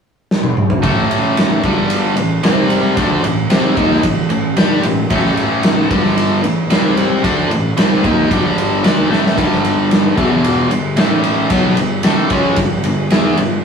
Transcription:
0.31 snare medium
0.43 high tom medium
0.57 mid tom medium
0.70 floor tom loud
0.83 1.60 A1 medium
0.83 1.63 A2 medium
0.83 1.63 E3 medium
0.83 1.64 A3 loud
0.83 kick loud
0.83 ride medium
1.11 ride medium
1.37 snare loud
1.37 ride medium
1.63 2.14 G1 loud
1.63 2.17 G2 loud
1.63 2.17 D3 loud
1.63 2.17 G3 loud
1.63 kick medium
1.63 ride medium
1.90 ride medium
2.16 2.41 A1 medium
2.16 2.39 A2 medium
2.16 2.39 E3 medium
2.16 ride medium
2.43 2.93 C2 medium
2.43 2.96 C3 medium
2.43 2.97 G3 medium
2.43 2.97 C4 loud
2.43 snare loud
2.43 ride medium
2.70 ride medium
2.96 3.22 D2 medium
2.96 3.23 D3 medium
2.96 3.23 A3 medium
2.96 3.24 D4 loud
2.96 kick medium
2.96 ride loud
3.23 3.48 A1 medium
3.23 3.45 A2 medium
3.23 3.46 E3 medium
3.23 ride medium
3.50 3.75 C2 loud
3.50 3.76 C3 loud
3.50 3.77 G3 loud
3.50 3.77 C4 loud
3.50 snare loud
3.50 ride medium
3.77 4.02 D#2 loud
3.77 4.03 D#3 medium
3.77 4.03 A#3 medium
3.77 4.04 D#4 loud
3.77 kick loud
3.77 ride medium
3.91 snare soft
4.03 4.29 A1 medium
4.03 4.25 A2 medium
4.03 4.25 E3 medium
4.03 kick medium
4.03 ride medium
4.30 4.55 A1 medium
4.30 4.52 A2 medium
4.30 4.52 E3 medium
4.30 ride medium
4.57 4.82 G2 medium
4.57 4.83 G3 medium
4.57 4.84 D4 medium
4.57 4.84 G4 loud
4.57 snare loud
4.57 ride medium
4.83 5.09 A1 medium
4.83 5.05 A2 medium
4.83 5.06 E3 medium
4.83 ride medium
5.10 5.87 A1 medium
5.10 5.90 A2 medium
5.10 5.90 E3 loud
5.10 5.90 A3 loud
5.10 kick loud
5.10 ride medium
5.26 snare soft
5.37 ride medium
5.63 snare loud
5.63 ride medium
5.90 6.40 G1 loud
5.90 6.43 G2 medium
5.90 6.43 D3 medium
5.90 6.43 G3 loud
5.90 kick loud
5.90 ride medium
6.05 snare soft
6.17 ride medium
6.43 6.69 A1 medium
6.43 6.65 A2 medium
6.43 6.65 E3 medium
6.43 ride medium
6.70 7.20 C2 medium
6.70 7.23 C3 medium
6.70 7.24 G3 loud
6.70 7.24 C4 medium
6.70 snare loud
6.70 ride medium
6.97 ride medium
7.23 7.49 D2 medium
7.23 7.50 D3 medium
7.23 7.50 A3 loud
7.23 7.50 D4 loud
7.23 kick medium
7.23 ride medium
7.50 7.75 A1 medium
7.50 7.72 A2 medium
7.50 7.72 E3 medium
7.50 ride medium
7.77 8.02 C2 loud
7.77 8.03 C3 medium
7.77 8.03 G3 loud
7.77 8.04 C4 loud
7.77 snare loud
7.77 ride medium
8.03 8.29 D#2 loud
8.03 8.29 D#3 loud
8.03 8.30 A#3 medium
8.03 8.30 D#4 loud
8.03 kick loud
8.03 ride medium
8.31 8.80 G1 loud
8.31 8.83 G2 medium
8.31 8.82 D3 loud
8.31 8.83 G3 loud
8.31 kick medium
8.31 ride medium
8.58 ride medium
8.83 9.09 D2 medium
8.83 9.09 D3 medium
8.83 9.09 A3 loud
8.83 9.10 D4 loud
8.83 snare loud
8.83 ride medium
9.10 9.35 A1 medium
9.10 9.36 A2 medium
9.10 9.36 E3 medium
9.10 9.37 A3 loud
9.10 snare medium
9.26 snare medium
9.36 10.14 G1 medium
9.36 10.16 G2 medium
9.36 10.17 D3 loud
9.36 10.17 G3 loud
9.36 kick loud
9.36 ride medium
9.53 snare soft
9.65 ride medium
9.91 snare loud
9.91 ride medium
10.16 10.67 E1 medium
10.16 10.69 E2 medium
10.16 10.70 B2 loud
10.16 10.70 E3 loud
10.16 kick loud
10.16 ride medium
10.44 ride medium
10.70 10.95 G1 medium
10.70 10.92 G2 medium
10.70 10.92 D3 medium
10.70 ride medium
10.96 11.46 A1 loud
10.96 11.50 A2 medium
10.96 11.50 E3 medium
10.96 11.50 A3 medium
10.96 snare loud
10.96 ride medium
11.24 ride medium
11.50 11.75 B1 medium
11.50 11.76 B2 medium
11.50 11.77 F#3 loud
11.50 11.77 B3 medium
11.50 kick loud
11.50 ride loud
11.76 12.02 G1 medium
11.76 11.99 G2 medium
11.76 11.99 D3 medium
11.76 ride medium
12.03 12.28 A1 loud
12.03 12.30 A2 loud
12.03 12.30 E3 medium
12.03 12.30 A3 loud
12.03 snare loud
12.03 ride loud
12.30 12.55 C#2 loud
12.30 12.57 C#3 medium
12.30 12.57 G#3 loud
12.30 12.57 C#4 loud
12.30 kick loud
12.30 ride medium
12.56 12.82 G1 medium
12.56 12.79 G2 medium
12.56 12.79 D3 medium
12.56 kick medium
12.56 ride medium
12.84 13.09 G1 medium
12.84 13.06 G2 medium
12.84 13.06 D3 medium
12.84 ride medium
13.10 13.35 E2 loud
13.10 13.37 E3 medium
13.10 13.37 B3 medium
13.10 13.38 E4 medium
13.10 snare loud
13.10 ride medium
13.37 13.62 G1 medium
13.37 13.59 G2 medium
13.37 13.59 D3 medium
13.37 ride medium

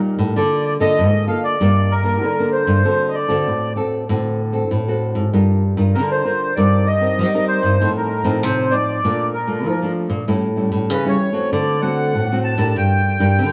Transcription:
0.00 0.14 A#2 medium
0.00 0.34 A#2 medium
0.00 0.32 G3 medium
0.00 0.32 A#3 medium
0.00 0.32 D#4 medium
0.19 0.33 A2 medium
0.36 0.76 D3 medium
0.36 0.96 D3 soft
0.36 0.78 A#3 medium
0.36 0.79 F4 soft
0.36 0.79 A4 medium
0.36 0.65 D5 medium
0.66 0.74 D5 medium
0.79 0.98 D3 medium
0.79 1.23 A#3 medium
0.79 1.23 F4 medium
0.79 1.23 A4 medium
0.79 1.25 D#5 loud
0.98 1.25 G#2 medium
0.98 1.57 D3 medium
1.27 1.55 A#3 medium
1.27 1.55 F4 medium
1.27 1.55 A4 medium
1.27 1.43 F5 loud
1.44 1.93 D5 loud
1.60 2.23 G2 loud
1.60 2.19 G3 medium
1.60 1.90 A#3 medium
1.60 1.90 D4 medium
1.60 1.90 A#4 medium
1.91 2.50 A#4 medium
2.03 2.31 A#3 medium
2.03 2.32 D4 medium
2.03 2.32 A#4 medium
2.22 2.81 D3 medium
2.22 2.63 D3 medium
2.39 2.80 A#3 medium
2.39 2.81 D4 medium
2.39 2.81 A#4 medium
2.53 3.10 C5 medium
2.67 2.81 G2 medium
2.84 3.44 D3 medium
2.84 3.25 D3 medium
2.84 3.14 C4 medium
2.84 3.14 F#4 soft
2.84 3.14 A4 medium
3.08 3.16 D#5 medium
3.14 3.73 D5 medium
3.28 3.48 D3 medium
3.28 3.71 C4 medium
3.28 3.71 F#4 medium
3.28 3.72 A4 medium
3.46 4.06 A2 medium
3.46 3.74 A2 medium
3.76 4.03 C4 medium
3.76 4.03 F#4 medium
3.76 4.04 A4 medium
4.09 4.62 A2 medium
4.09 4.68 D3 medium
4.09 4.38 C4 medium
4.09 4.39 F#4 medium
4.09 4.39 A4 medium
4.52 4.80 C4 medium
4.52 4.80 F#4 medium
4.52 4.80 A4 medium
4.71 5.11 A2 medium
4.71 5.30 A2 soft
4.88 5.29 C4 medium
4.88 5.29 F#4 medium
4.88 5.29 A4 medium
5.15 5.29 G#2 medium
5.33 5.73 G2 medium
5.33 5.92 G3 medium
5.33 5.62 D4 medium
5.33 5.62 F4 medium
5.33 5.62 A#4 soft
5.77 5.94 G2 medium
5.77 6.20 D4 medium
5.77 6.20 F4 medium
5.77 6.20 A#4 medium
5.94 6.53 D3 medium
5.94 6.22 D3 medium
5.94 6.10 A#4 medium
6.11 6.54 C5 medium
6.25 6.51 D4 medium
6.25 6.51 F4 medium
6.25 6.52 A#4 medium
6.56 7.19 G2 medium
6.56 7.15 G3 medium
6.56 6.86 C4 medium
6.56 6.86 D#4 soft
6.56 6.86 A#4 medium
6.56 6.88 D5 loud
6.86 7.45 D#5 loud
7.00 7.28 C4 medium
7.00 7.28 D#4 medium
7.00 7.28 A#4 medium
7.17 7.77 G3 medium
7.17 7.58 G3 medium
7.34 7.76 C4 medium
7.34 7.76 D#4 medium
7.34 7.76 A#4 medium
7.48 7.92 C5 loud
7.63 7.77 G2 medium
7.80 8.39 A2 medium
7.80 8.21 A2 medium
7.80 8.09 F3 medium
7.80 8.10 C4 soft
7.80 8.10 D#4 medium
7.97 8.40 A#4 medium
8.24 8.43 A2 medium
8.24 8.67 F3 medium
8.24 8.67 C4 medium
8.24 8.67 D#4 medium
8.43 9.02 A2 medium
8.43 8.69 C3 medium
8.43 8.75 C5 medium
8.71 8.99 F3 medium
8.71 8.99 C4 medium
8.71 8.99 D#4 medium
8.71 9.30 D5 loud
9.04 9.63 A#2 medium
9.04 9.66 A#2 medium
9.04 9.33 A3 medium
9.04 9.33 D4 medium
9.04 9.34 F4 medium
9.34 9.93 A#4 medium
9.47 9.75 A3 medium
9.47 9.75 D4 medium
9.47 9.75 F4 medium
9.65 10.25 F3 medium
9.65 10.06 F3 medium
9.82 10.24 A3 medium
9.82 10.24 D4 medium
9.82 10.24 F4 medium
10.10 10.24 A#2 medium
10.27 10.87 A2 medium
10.27 10.68 A2 medium
10.27 10.46 G3 soft
10.27 10.46 C#4 medium
10.27 10.47 E4 medium
10.56 10.99 G3 medium
10.56 11.00 C#4 medium
10.56 11.00 E4 medium
10.72 10.90 A2 medium
10.90 11.16 C#3 medium
10.90 11.49 E3 medium
10.90 11.07 B4 medium
11.05 11.31 G3 medium
11.05 11.31 C#4 medium
11.05 11.32 E4 medium
11.05 11.50 C#5 medium
11.33 11.76 A3 medium
11.33 11.77 C4 medium
11.33 11.77 F#4 medium
11.52 12.11 D3 medium
11.52 12.15 D3 loud
11.52 11.81 D5 medium
11.82 12.24 A3 medium
11.82 12.24 C4 soft
11.82 12.24 F#4 medium
11.82 12.40 F#5 medium
12.14 12.73 A2 medium
12.14 12.54 A2 medium
12.32 12.57 A3 medium
12.32 12.57 C4 medium
12.32 12.57 F#4 medium
12.44 12.77 A5 loud
12.58 12.72 A2 medium
12.58 13.01 D4 medium
12.58 13.01 G4 medium
12.58 13.01 A#4 medium
12.76 13.16 G2 medium
12.76 13.35 G3 soft
12.76 13.52 G5 loud
13.20 13.37 G2 medium
13.20 13.52 D4 medium
13.20 13.52 G4 medium
13.20 13.52 A#4 medium
13.39 13.52 D3 medium

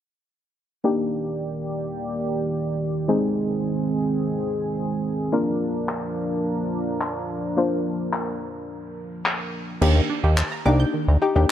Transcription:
0.84 5.29 D#3 medium
0.84 3.05 A#3 medium
0.84 3.07 A#3 medium
0.84 3.05 D4 medium
0.84 3.05 D#4 medium
0.84 3.07 G4 medium
0.84 3.05 G4 medium
0.84 3.07 D5 medium
3.08 5.29 G#3 medium
3.08 5.31 G#3 medium
3.08 5.29 C4 medium
3.08 5.31 C4 medium
3.08 5.29 D#4 medium
3.08 5.31 G#4 medium
3.08 5.29 G#4 medium
5.32 9.78 F3 medium
5.32 7.53 A#3 medium
5.32 9.78 A#3 medium
5.32 7.53 D4 medium
5.32 9.78 D4 medium
5.32 7.53 F4 medium
5.32 9.78 A#4 medium
5.32 7.54 A#4 medium
5.89 clap loud
7.01 clap loud
7.57 9.77 A#3 medium
7.57 9.78 D4 medium
7.57 9.78 F4 medium
7.57 9.78 C5 medium
8.13 clap loud
9.26 clap loud
9.81 10.01 D#2 loud
9.81 9.92 D#3 medium
9.81 10.22 A#3 medium
9.81 10.22 D4 medium
9.81 10.22 D#4 medium
9.81 10.22 G4 medium
9.81 crash medium
9.96 10.06 A#3 medium
10.10 10.20 D4 medium
10.24 10.43 D#2 medium
10.24 10.34 G4 medium
10.38 clap loud
10.52 10.62 A#5 medium
10.65 10.85 C2 medium
10.65 10.92 A#3 medium
10.65 10.92 D4 medium
10.65 10.93 D#4 medium
10.65 10.93 G4 medium
10.65 10.76 D6 loud
10.80 10.90 G6 medium
10.94 11.04 D#3 medium
11.08 11.17 D2 medium
11.22 11.28 D#4 medium
11.22 11.29 G4 medium
11.35 11.46 D#2 medium
11.35 11.49 A#3 medium
11.35 11.49 D4 medium
11.35 11.49 D#4 medium
11.35 11.49 G4 medium

